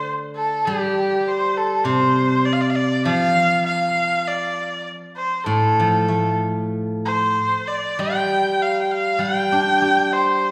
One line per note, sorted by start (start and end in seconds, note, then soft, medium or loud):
0.00 0.67 D3 soft
0.36 0.67 A4 medium
0.66 2.45 G3 medium
0.66 1.29 G4 medium
1.27 1.59 C5 medium
1.57 1.86 A4 medium
1.84 3.05 C3 soft
1.84 2.47 C5 medium
2.45 2.54 D5 medium
2.53 2.62 F5 medium
2.61 2.72 D5 medium
2.70 2.77 F5 medium
2.75 3.05 D5 medium
3.05 4.86 F3 medium
3.05 3.62 F5 loud
3.66 4.29 F5 medium
4.27 4.87 D5 medium
5.17 5.46 C5 medium
5.46 7.36 A2 medium
5.46 6.36 A4 medium
5.80 7.06 F3 soft
6.08 7.36 A3 soft
7.05 7.69 C5 medium
7.67 8.01 D5 medium
7.99 9.18 G3 medium
7.99 8.63 G5 medium
8.62 8.81 F5 medium
8.82 8.93 G5 medium
8.91 9.22 F5 medium
9.19 10.51 G3 soft
9.19 10.14 G5 medium
9.52 10.51 D4 soft
9.82 10.51 G4 soft
10.13 10.51 C5 medium